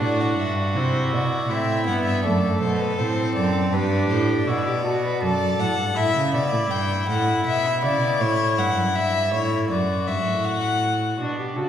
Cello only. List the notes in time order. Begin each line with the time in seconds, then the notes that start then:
0.01 A2
0.38 G2
0.75 C3
1.13 B2
1.50 A2
1.87 G2
2.24 F#2
2.62 B2
2.99 A2
3.36 F#2
3.73 G2
4.10 A2
4.47 B2
5.22 F#2
5.59 A2
5.78 G2
5.97 A2
6.15 C#3
6.34 B2
6.52 A2
6.71 G2
7.08 A2
7.46 B2
7.83 C#3
8.02 B2
8.20 A2
8.58 G2
8.76 F#2
8.95 G2
9.33 A2
9.70 F#2
10.07 G2
10.25 A2
11.20 B2
11.57 C#3